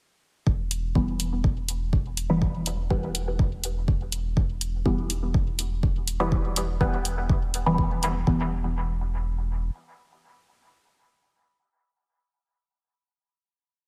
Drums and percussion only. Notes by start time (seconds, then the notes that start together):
0.47 kick
0.71 closed hi-hat
0.95 kick
1.20 closed hi-hat
1.44 kick
1.69 closed hi-hat
1.93 kick
2.17 closed hi-hat
2.42 kick
2.66 closed hi-hat
2.90 kick
3.15 closed hi-hat
3.39 kick
3.64 closed hi-hat
3.88 kick
4.12 closed hi-hat
4.37 kick
4.61 closed hi-hat
4.86 kick
5.10 closed hi-hat
5.34 kick
5.59 closed hi-hat
5.83 kick
6.08 closed hi-hat
6.32 kick
6.56 closed hi-hat
6.81 kick
7.05 closed hi-hat
7.29 kick
7.54 closed hi-hat
7.78 kick
8.03 closed hi-hat
8.27 kick